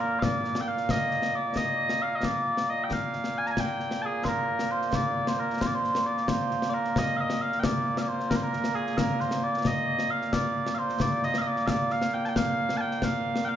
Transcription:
0.00 13.56 A#2 medium
0.00 13.56 A#3 medium
0.00 0.19 A#4 medium
0.19 0.61 D5 loud
0.19 0.23 F5 loud
0.19 concert bass drum medium
0.19 snare medium
0.45 snare soft
0.55 snare medium
0.61 0.68 G5 medium
0.68 0.91 F5 medium
0.77 snare soft
0.89 1.35 D#5 loud
0.89 concert bass drum medium
0.89 snare loud
1.11 snare soft
1.22 snare medium
1.35 1.57 D5 medium
1.56 2.02 D#5 loud
1.56 concert bass drum medium
1.56 snare medium
1.89 snare medium
2.02 2.15 F5 medium
2.15 2.25 D#5 medium
2.23 2.70 D5 medium
2.23 concert bass drum medium
2.23 snare medium
2.57 snare medium
2.70 2.84 D#5 medium
2.84 2.93 G5 medium
2.91 3.38 F5 loud
2.91 concert bass drum medium
2.91 snare medium
3.13 snare soft
3.24 snare medium
3.38 3.47 G#5 loud
3.46 3.51 A#5 medium
3.46 snare soft
3.51 3.60 G#5 medium
3.57 4.02 G5 loud
3.57 concert bass drum medium
3.57 snare medium
3.80 snare soft
3.91 snare medium
4.02 4.24 G#4 medium
4.02 4.06 A5 medium
4.24 4.71 A#4 loud
4.24 4.28 C5 loud
4.24 concert bass drum soft
4.24 snare medium
4.59 snare medium
4.71 4.95 C5 medium
4.82 snare soft
4.93 5.28 D5 loud
4.93 concert bass drum medium
4.93 snare loud
5.27 5.39 C5 medium
5.27 snare medium
5.39 5.61 A#4 medium
5.50 snare soft
5.61 5.67 C5 loud
5.61 concert bass drum medium
5.61 snare loud
5.67 5.75 D5 medium
5.75 6.06 C5 loud
5.84 snare soft
5.95 snare medium
6.06 6.28 D5 medium
6.17 snare soft
6.28 6.70 C5 medium
6.28 concert bass drum medium
6.28 snare loud
6.51 snare soft
6.62 snare medium
6.70 6.74 D5 medium
6.74 6.98 A#4 medium
6.85 snare soft
6.96 7.17 D#5 loud
6.96 concert bass drum medium
6.96 snare loud
7.17 7.41 D#5 medium
7.17 7.20 F5 medium
7.30 snare medium
7.41 7.60 F5 medium
7.52 snare soft
7.60 7.98 D5 medium
7.60 7.64 G5 medium
7.60 concert bass drum medium
7.60 snare loud
7.97 8.02 F5 medium
7.97 snare medium
8.02 8.08 D5 medium
8.08 8.30 C5 medium
8.20 snare soft
8.30 8.36 A#4 loud
8.30 concert bass drum medium
8.30 snare loud
8.36 8.43 C5 medium
8.43 8.75 A#4 medium
8.53 snare soft
8.64 snare medium
8.75 8.97 G#4 medium
8.87 snare soft
8.97 9.20 A#4 medium
8.97 concert bass drum medium
8.97 snare loud
9.20 9.43 C5 loud
9.20 snare soft
9.31 snare medium
9.43 9.67 D5 medium
9.54 snare soft
9.65 10.11 D#5 loud
9.65 concert bass drum medium
9.65 snare medium
9.99 snare medium
10.11 10.33 F5 medium
10.22 snare soft
10.33 10.75 D5 medium
10.33 concert bass drum medium
10.33 snare loud
10.66 snare medium
10.75 11.01 C5 loud
10.75 10.78 F5 loud
10.89 snare soft
11.00 11.24 D5 loud
11.00 concert bass drum medium
11.00 snare loud
11.23 11.38 D#5 loud
11.23 snare soft
11.34 snare medium
11.38 11.47 D#5 medium
11.38 11.41 F5 medium
11.47 11.66 D5 loud
11.56 snare soft
11.66 11.92 D5 loud
11.66 11.70 F5 loud
11.66 concert bass drum medium
11.66 snare loud
11.90 12.14 F5 loud
11.90 snare soft
12.02 snare medium
12.14 12.25 G5 medium
12.25 12.29 A5 medium
12.25 snare soft
12.29 12.37 G5 medium
12.36 12.77 F5 loud
12.36 concert bass drum medium
12.36 snare loud
12.69 snare medium
12.77 13.04 G5 loud
12.77 12.81 A5 loud
12.91 snare soft
13.02 13.45 F5 loud
13.02 concert bass drum medium
13.02 snare loud
13.36 snare medium
13.45 13.56 F5 loud
13.45 13.49 G5 loud

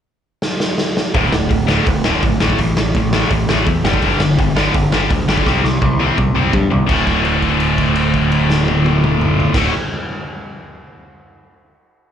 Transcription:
0.42 snare medium
0.60 snare medium
0.78 snare medium
0.97 snare medium
1.14 1.29 D1 medium
1.14 1.31 D2 medium
1.14 1.32 A2 medium
1.14 1.32 D3 loud
1.14 kick loud
1.14 open hi-hat medium
1.32 1.47 D1 medium
1.32 1.48 D2 medium
1.32 1.49 A2 medium
1.32 snare loud
1.49 1.79 D1 medium
1.49 1.66 D2 medium
1.49 1.66 A2 medium
1.49 kick loud
1.49 open hi-hat medium
1.67 1.84 D2 medium
1.67 1.85 A2 medium
1.67 1.86 D3 medium
1.67 snare loud
1.85 2.01 D1 medium
1.85 2.02 D2 medium
1.85 2.03 A2 medium
1.85 kick loud
1.85 open hi-hat medium
2.04 2.19 D1 medium
2.04 2.21 D2 medium
2.04 2.22 A2 medium
2.04 2.23 D3 medium
2.04 snare loud
2.23 2.37 G#1 medium
2.23 2.39 D2 medium
2.23 2.39 A2 medium
2.23 kick loud
2.23 open hi-hat medium
2.40 2.55 A1 medium
2.40 2.58 A2 medium
2.40 2.58 E3 medium
2.40 2.58 A3 medium
2.40 snare loud
2.50 kick medium
2.58 2.73 A1 medium
2.58 2.76 A2 medium
2.58 2.76 E3 medium
2.58 kick medium
2.58 open hi-hat medium
2.77 2.91 A1 medium
2.77 2.94 A2 medium
2.77 2.94 E3 medium
2.77 snare loud
2.95 3.23 A1 medium
2.95 3.12 A2 medium
2.95 3.12 E3 medium
2.95 kick loud
2.95 open hi-hat medium
3.13 3.30 A2 medium
3.13 3.31 E3 medium
3.13 3.31 A3 medium
3.13 snare loud
3.30 3.45 A1 medium
3.30 3.48 A2 medium
3.30 3.48 E3 medium
3.30 kick loud
3.30 open hi-hat medium
3.49 3.63 A1 medium
3.49 3.66 A2 medium
3.49 3.66 E3 medium
3.49 3.67 A3 medium
3.49 snare loud
3.67 3.81 E2 medium
3.67 3.84 A2 medium
3.67 3.84 E3 medium
3.67 kick loud
3.67 open hi-hat medium
3.84 3.98 G1 medium
3.84 4.02 G2 medium
3.84 4.02 D3 medium
3.84 4.02 G3 medium
3.84 snare loud
3.94 kick medium
4.02 4.17 G1 medium
4.02 4.20 G2 medium
4.02 4.20 D3 medium
4.02 4.21 G3 loud
4.02 kick medium
4.02 open hi-hat medium
4.20 4.34 G1 medium
4.20 4.37 G2 medium
4.20 4.37 D3 medium
4.20 snare loud
4.38 4.67 G1 medium
4.38 4.55 G2 medium
4.38 4.55 D3 medium
4.38 kick loud
4.38 open hi-hat medium
4.56 4.73 G2 medium
4.56 4.73 D3 medium
4.56 4.74 G3 loud
4.56 snare loud
4.74 4.88 G1 medium
4.74 4.90 G2 medium
4.74 4.91 D3 medium
4.74 kick loud
4.74 open hi-hat medium
4.92 5.07 G1 medium
4.92 5.10 G2 medium
4.92 5.10 D3 medium
4.92 5.10 G3 medium
4.92 snare loud
5.10 5.24 D2 medium
5.10 5.27 G2 medium
5.10 5.27 D3 medium
5.10 kick loud
5.10 open hi-hat medium
5.28 5.42 G1 medium
5.28 5.45 G2 medium
5.28 5.45 D3 medium
5.28 5.46 G3 medium
5.28 snare loud
5.37 kick medium
5.46 5.60 C2 medium
5.46 5.63 C3 medium
5.46 5.64 G3 loud
5.46 5.64 C4 medium
5.46 kick medium
5.46 snare medium
5.64 5.78 C2 medium
5.64 5.80 C3 medium
5.64 5.81 G3 medium
5.64 snare medium
5.82 6.10 C2 medium
5.82 5.98 C3 medium
5.82 5.98 G3 medium
5.82 kick loud
5.82 high tom medium
5.99 6.16 C3 medium
5.99 6.17 G3 medium
5.99 6.17 C4 medium
5.99 high tom medium
6.18 6.32 C2 medium
6.18 6.34 C3 medium
6.18 6.34 G3 medium
6.18 kick loud
6.18 mid tom medium
6.35 6.49 C2 medium
6.35 6.51 C3 medium
6.35 6.51 G3 medium
6.35 6.53 C4 medium
6.35 mid tom medium
6.53 6.67 G2 medium
6.53 6.69 C3 medium
6.53 6.69 G3 medium
6.53 kick loud
6.53 floor tom medium
6.70 6.85 C2 medium
6.70 6.86 C3 medium
6.70 6.87 G3 medium
6.70 floor tom medium
6.86 9.46 D1 medium
6.86 9.53 D2 medium
6.86 9.54 A2 loud
6.86 9.55 D3 loud
6.86 9.56 A3 loud
6.86 9.57 F#4 loud
6.86 kick loud
6.86 crash medium
7.07 kick medium
7.07 crash soft
7.25 crash soft
7.42 kick medium
7.42 crash soft
7.60 crash soft
7.78 kick medium
7.78 crash soft
7.96 crash soft
8.14 kick medium
8.14 crash soft
8.32 crash medium
8.50 snare medium
8.68 high tom medium
8.86 high tom medium
9.04 mid tom loud
9.21 mid tom loud
9.40 floor tom medium
9.53 9.70 D1 medium
9.53 9.70 D2 medium
9.53 9.71 A2 loud
9.53 9.71 D3 loud
9.53 9.72 A3 medium
9.53 kick loud
9.53 snare medium
9.53 crash loud
9.57 9.72 F#4 loud

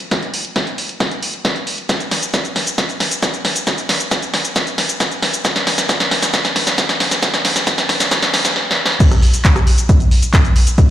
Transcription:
0.00 closed hi-hat soft
0.11 kick loud
0.11 snare medium
0.11 closed hi-hat medium
0.22 closed hi-hat soft
0.34 open hi-hat loud
0.45 closed hi-hat soft
0.56 kick loud
0.56 snare medium
0.56 closed hi-hat medium
0.67 closed hi-hat soft
0.78 open hi-hat loud
0.89 closed hi-hat soft
1.00 kick loud
1.00 snare medium
1.00 closed hi-hat medium
1.11 closed hi-hat soft
1.23 open hi-hat loud
1.34 closed hi-hat soft
1.45 kick loud
1.45 snare medium
1.45 closed hi-hat medium
1.56 closed hi-hat soft
1.67 open hi-hat loud
1.78 closed hi-hat soft
1.89 kick loud
1.89 snare medium
1.89 closed hi-hat medium
1.89 shaker medium
2.00 closed hi-hat soft
2.00 shaker soft
2.11 snare medium
2.11 open hi-hat loud
2.23 closed hi-hat soft
2.23 shaker medium
2.34 kick loud
2.34 snare medium
2.34 closed hi-hat medium
2.34 shaker medium
2.45 closed hi-hat soft
2.45 shaker soft
2.56 snare medium
2.56 open hi-hat loud
2.67 closed hi-hat soft
2.67 shaker medium
2.78 kick loud
2.78 snare medium
2.78 closed hi-hat medium
2.78 shaker medium
2.89 closed hi-hat soft
2.89 shaker soft
3.00 snare medium
3.00 open hi-hat loud
3.11 closed hi-hat soft
3.11 shaker medium
3.22 kick loud
3.22 snare medium
3.22 closed hi-hat medium
3.22 shaker medium
3.34 closed hi-hat soft
3.34 shaker soft
3.45 snare medium
3.45 open hi-hat loud
3.56 closed hi-hat soft
3.56 shaker medium
3.67 kick loud
3.67 snare medium
3.67 closed hi-hat medium
3.67 shaker medium
3.78 closed hi-hat soft
3.78 shaker soft
3.89 snare medium
3.89 open hi-hat loud
4.00 closed hi-hat soft
4.00 shaker medium
4.11 kick loud
4.11 snare medium
4.11 closed hi-hat medium
4.11 shaker medium
4.22 closed hi-hat soft
4.22 shaker soft
4.34 snare medium
4.34 open hi-hat loud
4.45 closed hi-hat soft
4.45 shaker medium
4.56 kick loud
4.56 snare medium
4.56 closed hi-hat medium
4.56 shaker medium
4.67 closed hi-hat soft
4.67 shaker soft
4.78 snare medium
4.78 open hi-hat loud
4.89 closed hi-hat soft
4.89 shaker medium
5.00 kick loud
5.00 snare medium
5.00 closed hi-hat medium
5.00 shaker medium
5.11 closed hi-hat soft
5.11 shaker soft
5.22 snare medium
5.22 open hi-hat loud
5.34 closed hi-hat soft
5.34 shaker medium
5.45 kick loud
5.45 snare medium
5.45 closed hi-hat medium
5.45 shaker medium
5.56 snare medium
5.56 closed hi-hat soft
5.56 shaker soft
5.67 snare medium
5.67 open hi-hat loud
5.78 snare medium
5.78 closed hi-hat soft
5.78 shaker medium
5.89 kick loud
5.89 snare medium
5.89 closed hi-hat medium
5.89 shaker soft
6.00 snare medium
6.00 closed hi-hat soft
6.00 shaker soft
6.11 snare medium
6.11 open hi-hat loud
6.22 snare medium
6.22 closed hi-hat soft
6.22 shaker medium
6.34 kick loud
6.34 snare medium
6.34 closed hi-hat medium
6.34 shaker medium
6.45 snare medium
6.45 closed hi-hat soft
6.45 shaker soft
6.56 snare loud
6.56 open hi-hat loud
6.67 snare medium
6.67 closed hi-hat soft
6.67 shaker medium
6.78 kick loud
6.78 snare loud
6.78 closed hi-hat medium
6.78 shaker medium
6.89 snare medium
6.89 closed hi-hat soft
6.89 shaker soft
7.00 snare loud
7.00 open hi-hat loud
7.11 snare medium
7.11 closed hi-hat soft
7.11 shaker medium
7.22 kick loud
7.22 snare loud
7.22 closed hi-hat medium
7.22 shaker medium
7.34 snare medium
7.34 closed hi-hat soft
7.34 shaker soft
7.45 snare loud
7.45 open hi-hat loud
7.56 snare medium
7.56 closed hi-hat soft
7.56 shaker medium
7.67 kick loud
7.67 snare loud
7.67 closed hi-hat medium
7.67 shaker medium
7.78 snare medium
7.78 closed hi-hat soft
7.78 shaker soft
7.89 kick medium
7.89 snare loud
7.89 open hi-hat loud
8.00 snare medium
8.00 closed hi-hat soft
8.00 shaker medium
8.11 kick loud
8.11 snare loud
8.11 closed hi-hat medium
8.11 shaker medium
8.22 snare medium
8.22 closed hi-hat soft
8.22 shaker soft
8.34 snare loud
8.34 open hi-hat loud
8.45 snare loud
8.45 closed hi-hat soft
8.45 shaker medium
8.56 snare medium
8.71 snare medium
8.85 snare loud
9.00 kick loud
9.00 closed hi-hat medium
9.00 crash loud
9.00 shaker medium
9.11 cross-stick medium
9.11 closed hi-hat soft
9.11 shaker soft
9.22 open hi-hat loud
9.34 closed hi-hat soft
9.34 shaker medium
9.45 kick loud
9.45 clap loud
9.45 closed hi-hat medium
9.45 shaker soft
9.56 cross-stick medium
9.56 closed hi-hat soft
9.56 shaker soft
9.67 open hi-hat loud
9.78 closed hi-hat soft
9.78 shaker medium
9.89 kick loud
9.89 closed hi-hat medium
9.89 shaker medium
10.00 closed hi-hat soft
10.00 shaker soft
10.11 open hi-hat loud
10.23 closed hi-hat soft
10.23 shaker medium
10.34 kick loud
10.34 clap loud
10.34 closed hi-hat medium
10.34 shaker soft
10.45 closed hi-hat soft
10.45 shaker soft
10.56 open hi-hat loud
10.67 closed hi-hat soft
10.67 shaker medium
10.78 kick loud
10.78 closed hi-hat medium
10.78 shaker medium

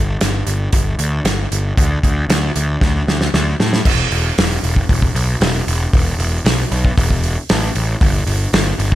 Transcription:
0.00 0.15 G1 medium
0.21 0.41 G1 medium
0.21 snare loud
0.21 closed hi-hat medium
0.47 0.67 G1 medium
0.47 closed hi-hat medium
0.73 0.93 G1 medium
0.73 kick loud
0.73 closed hi-hat loud
0.99 1.19 D2 medium
0.99 closed hi-hat medium
1.25 1.45 G1 loud
1.25 snare loud
1.25 closed hi-hat medium
1.51 1.72 G1 medium
1.51 closed hi-hat medium
1.77 1.98 D2 medium
1.77 kick loud
1.77 closed hi-hat medium
2.03 2.24 D2 medium
2.03 kick medium
2.03 closed hi-hat medium
2.29 2.49 D2 medium
2.29 snare loud
2.29 closed hi-hat medium
2.56 2.76 D2 medium
2.56 closed hi-hat medium
2.81 3.02 D2 medium
2.81 kick loud
2.81 snare medium
3.07 3.28 D2 medium
3.07 snare medium
3.21 snare medium
3.34 3.54 D2 loud
3.34 snare medium
3.60 3.80 A2 medium
3.60 snare medium
3.73 snare medium
3.85 4.05 E1 loud
3.85 kick loud
3.85 crash loud
4.11 4.30 E1 medium
4.11 open hi-hat medium
4.38 4.57 E1 medium
4.38 snare loud
4.38 open hi-hat medium
4.63 4.82 E1 medium
4.63 open hi-hat medium
4.76 kick medium
4.89 5.09 E1 loud
4.89 kick loud
4.89 open hi-hat medium
5.02 kick medium
5.15 5.34 B1 medium
5.15 open hi-hat medium
5.41 5.60 E1 loud
5.41 snare loud
5.41 open hi-hat medium
5.67 5.86 E1 medium
5.67 open hi-hat medium
5.93 6.12 E1 loud
5.93 kick loud
5.93 open hi-hat medium
6.19 6.38 E1 medium
6.19 open hi-hat medium
6.44 6.64 B1 loud
6.44 snare loud
6.44 open hi-hat medium
6.71 6.90 B1 medium
6.71 open hi-hat medium
6.85 kick medium
6.98 7.36 E1 loud
6.98 kick loud
6.98 open hi-hat loud
7.10 kick medium
7.23 open hi-hat medium
7.49 7.69 A1 loud
7.49 snare loud
7.49 open hi-hat medium
7.75 7.94 A1 loud
7.75 open hi-hat medium
8.01 8.20 G1 loud
8.01 kick loud
8.01 open hi-hat medium
8.27 8.46 G1 medium
8.27 open hi-hat medium
8.53 8.72 G1 loud
8.53 snare loud
8.53 open hi-hat medium
8.78 8.95 G1 medium
8.78 open hi-hat medium

